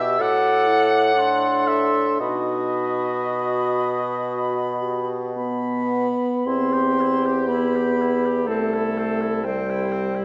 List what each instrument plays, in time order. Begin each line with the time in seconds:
Already playing: bassoon B2, clarinet G4, french horn G4, oboe E5, flute E6
0.19 bassoon A2, french horn F#4, clarinet A4, oboe F#5, flute D6
0.67 french horn E4
1.15 french horn D4, clarinet A4, flute C6
1.67 oboe E5
2.20 bassoon B2, french horn D#4, clarinet F#4, oboe D#5, flute B5
3.27 french horn F#4
4.82 french horn G4
5.36 french horn B3, flute B5
6.46 bassoon E2, french horn C4, oboe E4, clarinet G4, flute C6
6.73 oboe G4
7.01 oboe E4
7.26 oboe G4
7.47 french horn B3, flute B5
7.52 oboe E4
7.76 oboe G4
8.01 oboe E4
8.26 oboe G4
8.46 bassoon C2, french horn A3, oboe C4, clarinet A4, flute A5
8.74 oboe E4
8.98 oboe C4
9.21 oboe E4
9.44 french horn G3, oboe C4, clarinet C5, flute G5
9.70 oboe E4
9.92 oboe C4
10.15 oboe E4